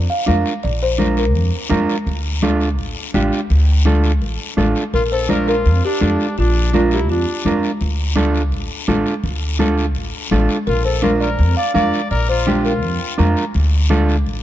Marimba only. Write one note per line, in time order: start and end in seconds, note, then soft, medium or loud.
0.00 0.11 D5 medium
0.10 0.18 F5 medium
0.28 0.61 F5 medium
0.64 0.82 D5 medium
0.83 1.19 C5 medium
1.18 1.86 A#4 medium
4.94 5.02 A#4 medium
5.12 5.29 C5 medium
5.30 5.47 D5 medium
5.49 5.85 A#4 loud
5.85 6.34 G4 medium
6.39 6.71 F4 medium
6.74 6.82 F4 medium
6.93 7.09 G4 medium
7.10 7.60 F4 medium
10.67 10.84 A#4 medium
10.85 11.02 C5 medium
11.03 11.11 A#4 medium
11.21 11.54 D5 loud
11.57 11.74 F5 medium
11.75 12.12 F5 loud
12.11 12.30 D5 medium
12.29 12.62 C5 medium
12.65 13.33 A#4 medium